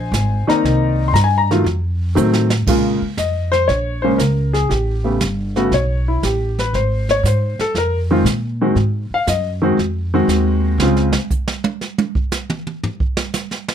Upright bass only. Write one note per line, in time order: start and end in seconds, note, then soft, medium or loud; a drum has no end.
0.00 0.11 A#1 medium
0.12 0.45 G#1 medium
0.48 muted upright bass stroke soft
0.63 1.12 C2 medium
1.13 1.63 G2 medium
1.64 2.14 F2 medium
2.16 2.65 A2 medium
2.67 2.99 A#2 medium
3.01 muted upright bass stroke soft
3.17 3.67 F2 medium
3.68 4.17 A#1 medium
4.19 4.68 C#2 medium
4.70 5.19 A1 medium
5.21 5.70 G1 medium
5.71 6.21 B1 medium
6.23 6.72 A1 medium
6.73 7.22 G#1 medium
7.23 7.56 G#2 medium
7.59 muted upright bass stroke soft
7.75 8.24 F2 medium
8.24 8.74 A#2 medium
8.75 9.08 G#2 medium
9.10 muted upright bass stroke soft
9.27 9.76 F#2 medium
9.77 10.27 F2 medium
10.28 10.77 D#2 medium
10.78 11.13 C#2 medium